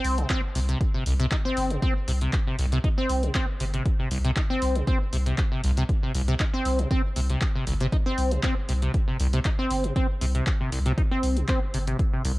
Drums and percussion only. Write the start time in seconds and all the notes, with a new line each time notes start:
0.04 open hi-hat
0.18 closed hi-hat
0.30 kick, clap, closed hi-hat
0.55 open hi-hat
0.69 closed hi-hat
0.81 kick, closed hi-hat
1.06 open hi-hat
1.20 closed hi-hat
1.31 kick, clap, closed hi-hat
1.57 open hi-hat
1.70 closed hi-hat
1.82 kick, closed hi-hat
2.08 open hi-hat
2.21 closed hi-hat
2.33 kick, clap, closed hi-hat
2.59 open hi-hat
2.72 closed hi-hat
2.84 kick, closed hi-hat
3.09 open hi-hat
3.23 closed hi-hat
3.35 kick, clap, closed hi-hat
3.60 open hi-hat
3.74 closed hi-hat
3.86 kick, closed hi-hat
4.11 open hi-hat
4.25 closed hi-hat
4.36 kick, clap, closed hi-hat
4.62 open hi-hat
4.76 closed hi-hat
4.87 kick, closed hi-hat
5.13 open hi-hat
5.26 closed hi-hat
5.38 kick, clap, closed hi-hat
5.64 open hi-hat
5.77 closed hi-hat
5.89 kick, closed hi-hat
6.15 open hi-hat
6.28 closed hi-hat
6.40 kick, clap, closed hi-hat
6.65 open hi-hat
6.79 closed hi-hat
6.91 kick, closed hi-hat
7.16 open hi-hat
7.30 closed hi-hat
7.41 kick, clap, closed hi-hat
7.67 open hi-hat
7.81 closed hi-hat
7.92 kick, closed hi-hat
8.18 open hi-hat
8.31 closed hi-hat
8.43 kick, clap, closed hi-hat
8.69 open hi-hat
8.82 closed hi-hat
8.94 kick, closed hi-hat
9.20 open hi-hat
9.33 closed hi-hat
9.45 kick, clap, closed hi-hat
9.70 open hi-hat
9.84 closed hi-hat
9.96 kick, closed hi-hat
10.21 open hi-hat
10.35 closed hi-hat
10.47 kick, clap, closed hi-hat
10.72 open hi-hat
10.86 closed hi-hat
10.98 kick, closed hi-hat
11.23 open hi-hat
11.37 closed hi-hat
11.48 kick, clap, closed hi-hat
11.74 open hi-hat
11.87 closed hi-hat
11.99 kick, closed hi-hat
12.25 open hi-hat